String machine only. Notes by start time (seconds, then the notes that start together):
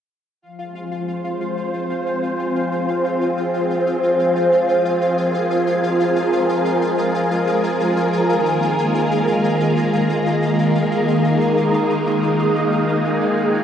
0.43 F3
0.59 G#3
0.64 G#4 C5
0.70 C4
5.11 A#4
8.29 D#3
8.40 A#3